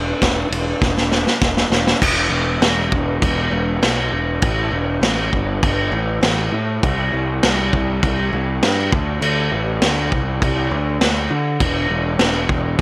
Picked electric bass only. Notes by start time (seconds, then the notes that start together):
Already playing: E1
0.22 E1
0.51 E1
0.81 E1
1.42 E1
1.70 E1
2.02 E1
2.30 E1
2.61 E1
2.92 E1
3.22 E1
3.51 E1
3.82 B1
4.12 E1
4.42 A1
4.72 E1
5.01 A1
5.33 G1
5.63 G1
5.92 A1
6.21 A1
6.52 A2
6.83 C2
7.13 C2
7.43 C2
7.74 C2
8.03 C2
8.33 C2
8.62 G2
8.92 D2
9.21 D2
9.52 A1
9.82 D2
10.12 C2
10.42 C2
10.71 D2
11.01 D2
11.31 D3
11.60 E1
11.90 E1
12.19 E1
12.49 E1